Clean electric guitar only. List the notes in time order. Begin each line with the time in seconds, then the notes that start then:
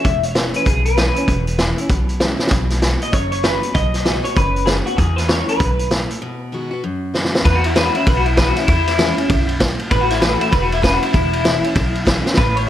0.04 E5
0.25 C#5
0.56 B4
0.66 G#4
0.85 B4
3.03 D#5
3.13 C#5
3.32 C#5
3.44 B4
3.74 D#5
4.24 C#5
4.37 B4
4.66 G#4
4.86 F#4
4.97 G#4
5.16 B4
5.29 C#5
5.49 B4
7.45 B4
7.55 F#4
7.66 E4
7.76 B4
7.85 F#4
7.96 E4
8.07 B4
8.17 F#4
8.26 E4
8.37 B4
8.48 F#4
8.57 E4
8.67 E4
9.91 B4
10.01 F#4
10.11 E4
10.21 B4
10.31 F#4
10.41 E4
10.52 B4
10.62 F#4
10.73 E4
10.83 B4
10.93 F#4
11.03 E4
11.13 E4
12.37 B4
12.56 C#5